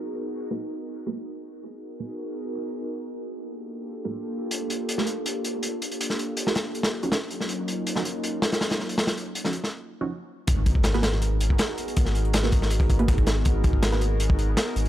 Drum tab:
HH |----------------|----------------|----------------|x-x-x-x-x-x-x-xx|
SD |----------------|----------------|----------------|-----o----------|
BD |----------------|----------------|----------------|----------------|

HH |x-x-x-x-xx-xx-x-|x-x-x-x-x-xxxx-x|xxx-x-x---------|x-x-xxx-x-x-x-xx|
SD |-o---oo--o--o--o|-----o----ooooo-|oo---o-o--------|----oooo----o---|
BD |----------------|----------------|----------------|o-oo-------o----|

HH |x-xxx-x-x-xxxxx-|x-x-xxx-x-x-x-xx|
SD |-o--oo-o-o--o-o-|----oo------o---|
BD |o-----o--oo-oo--|o-oo-----o------|